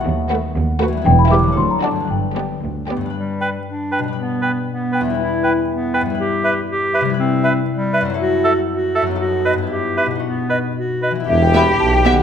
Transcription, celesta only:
X:1
M:2/4
L:1/16
Q:1/4=118
K:Bphr
V:1 name="Celesta"
f8 | [K:G] g b d'2 c' _b a2 | g4 z4 | z8 |
z8 | z8 | z8 | [K:Em] z8 |
z8 | z8 | z8 | e g b2 a g f2 |]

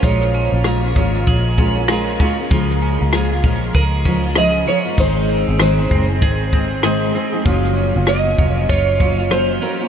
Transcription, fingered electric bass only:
X:1
M:4/4
L:1/16
Q:"Swing 16ths" 1/4=97
K:Db
V:1 name="Fingered electric bass" clef=bass
B,,,3 B,,,3 A,,,2 B,,,6 z2 | D,,3 D,,3 B,,,2 D,,6 z2 | A,,,3 A,,,3 G,,,2 A,,,6 z2 | G,,,3 G,,,3 F,,,2 G,,,6 z2 |]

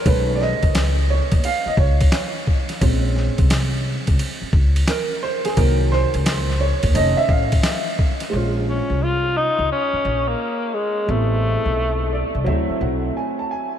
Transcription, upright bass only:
X:1
M:4/4
L:1/16
Q:"Swing 16ths" 1/4=87
K:Bbm
V:1 name="Upright bass" clef=bass
=B,,,3 ^C,,4 ^D,, z2 C,,2 z4 | B,,,3 C,,4 D,, z2 D,,2 z4 | C,,3 D,,4 E,, F,,, z =A,,,2 z4 | B,,,3 C,,4 D,, z2 B,,,2 z4 |
=A,,,3 =B,,,4 C,, =D,, z _C,,2 z4 |]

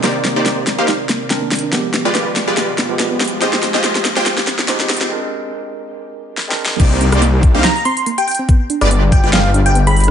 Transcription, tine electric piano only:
X:1
M:4/4
L:1/16
Q:"Swing 16ths" 1/4=142
K:Cm
V:1 name="Tine electric piano"
[E,CBd]12 [E,CDB]4 | [F,A,=B,G]8- [F,A,B,G]3 [F,A,B,G] z4 | [F,A,EG]12 [F,A,EG]4 | [A,CDB]8- [A,CDB]3 z2 [A,CDB]3 |
z16 | z16 |]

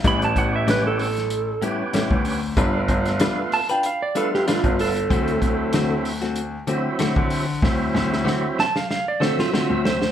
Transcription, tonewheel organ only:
X:1
M:4/4
L:1/8
Q:"Swing 16ths" 1/4=95
K:Dmix
V:1 name="Tonewheel organ"
[B,^CG]3 z2 [B,CG]2 z | [A,B,=F]3 z2 [A,B,F]2 z | [F,CE]3 z2 [F,CE]2 z | [F,CE]3 z2 [F,Ce]2 z |]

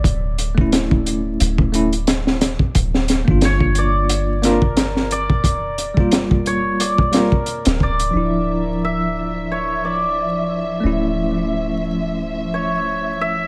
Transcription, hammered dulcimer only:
X:1
M:4/4
L:1/8
Q:"Swing 16ths" 1/4=89
K:Dm
V:1 name="Hammered dulcimer"
z8 | z2 ^c d2 B2 d- | d3 ^c d B2 d- | d2 e2 ^c d2 z |
z4 z ^c2 e |]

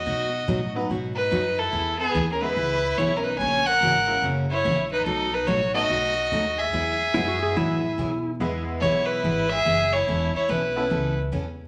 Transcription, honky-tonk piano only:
X:1
M:4/4
L:1/8
Q:"Swing" 1/4=144
K:E
V:1 name="Honky-tonk piano"
z3 [F,B,DFB] z4 | z3 [G,B,EGB] z4 | z3 [^A,CEF^A] z4 | z3 [A,B,DFA] z4 |
z2 [G,B,EFG]3 z3 | [G,B,EGB]4- [G,B,EGB] z3 | z3 [B,CEAB] z4 |]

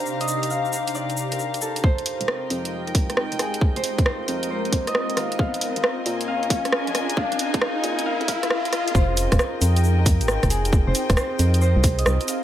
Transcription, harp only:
X:1
M:4/4
L:1/16
Q:"Swing 16ths" 1/4=135
K:Fm
V:1 name="Harp"
z e2 z f2 z2 =d2 z B2 z =A z | c2 z6 z B2 z B z A2 | z c2 z c2 z2 c2 z e2 z f z | f2 z6 f2 z6 |
f2 z2 f2 z2 f2 f2 f2 f2 | c2 z6 z B2 z B z A2 | z c2 z c2 z2 c2 z e2 z f z |]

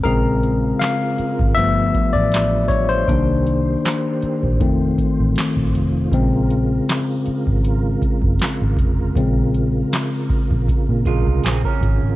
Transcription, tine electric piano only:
X:1
M:4/4
L:1/16
Q:"Swing 16ths" 1/4=79
K:Bbm
V:1 name="Tine electric piano"
B4 f4 =e3 =d3 _d c- | c6- c z8 z | z16 | z16 |]
V:2 name="Tine electric piano" clef=bass
[D,A,C]6 z2 [F,=A,=B,]2 z6 | [E,B,=D]6 z2 [E,=A,C]2 z6 | [D,A,C]6 z8 z2 | [D,A,C]2 z12 z2 |]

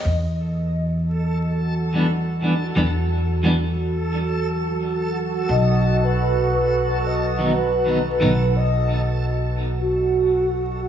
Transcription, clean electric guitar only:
X:1
M:4/4
L:1/16
Q:"Swing 16ths" 1/4=88
K:Bphr
V:1 name="Clean electric guitar"
z8 z3 [E,G,B,D] z2 [E,G,B,D] z | [E,G,B,D] z3 [E,G,B,D] z8 z3 | z8 z3 [^D,F,B,^D] z2 [D,F,B,D] z | [^D,F,B,^D] z12 z3 |]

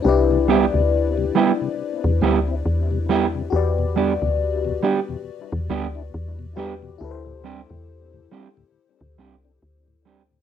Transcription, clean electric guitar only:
X:1
M:4/4
L:1/8
Q:"Swing 16ths" 1/4=69
K:Clyd
V:1 name="Clean electric guitar"
z [G,B,EG] z [G,B,EG] z [G,B,EG] z [G,B,EG] | z [G,B,DG] z [G,B,DG] z [G,B,DG] z [G,B,DG] | z [G,CDG] z [G,CDG] z [G,CDG] z [G,CDG] |]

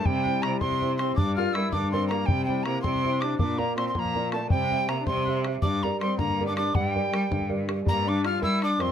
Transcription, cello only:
X:1
M:6/8
L:1/16
Q:3/8=107
K:Gdor
V:1 name="Cello" clef=bass
C,4 C,2 C,6 | G,,4 G,2 G,,6 | C,4 C,2 C,6 | B,,4 B,,2 B,,6 |
C,4 C,2 C,6 | G,,4 G,2 G,,6 | G,,4 G,2 G,,6 | G,,6 G,4 F,, z |]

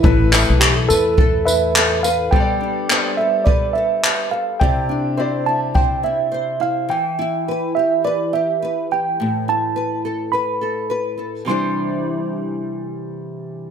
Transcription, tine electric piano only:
X:1
M:4/4
L:1/8
Q:"Swing 16ths" 1/4=105
K:C
V:1 name="Tine electric piano"
E z G A2 [Be]2 f | g3 e d e2 f | g3 a g e2 f | g3 e d e2 g- |
g a2 z b3 z | c'8 |]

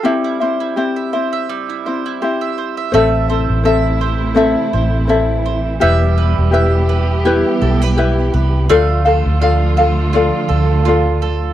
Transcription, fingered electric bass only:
X:1
M:4/4
L:1/16
Q:"Swing 16ths" 1/4=83
K:Am
V:1 name="Fingered electric bass" clef=bass
z16 | A,,,3 A,,,6 z A,,,6 | E,,,3 E,,,6 z B,,,4 C,,2 | D,,3 D,,6 z D,,6 |]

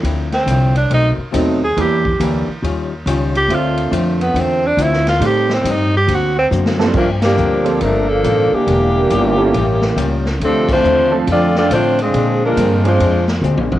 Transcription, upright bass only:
X:1
M:4/4
L:1/8
Q:"Swing" 1/4=139
K:Dm
V:1 name="Upright bass" clef=bass
D,,2 C,,2 =B,,, z ^D,,2 | E,,2 D,, z _E,,2 _D,,2 | D,,2 F,,2 E,,2 D,,2 | A,,2 G,,2 D,,2 ^F,,2 |
[K:Gm] G,,2 D,,2 G,,,2 A,,, z | =E,,,2 G,,,2 A,,,2 ^C,,2 | D,,2 E,,2 F,,2 A,,2 | B,,2 G,,2 F,,2 (3D,, B,,, _A,,, |]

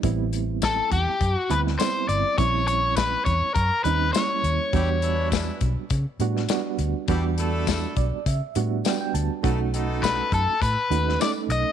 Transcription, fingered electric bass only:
X:1
M:4/4
L:1/16
Q:1/4=102
K:Edor
V:1 name="Fingered electric bass" clef=bass
A,,,6 E,, z F,, z D,,2 z2 G,,, z | ^A,,,6 E,, z F,, z ^D,,2 z2 D,, z | E,,6 B,,, z C, z A,,2 z2 D,, z | E,,6 B,,, z C, z A,,2 z2 D,, z |
B,,,6 F,, z A,, z ^D,,2 z2 B,,, z |]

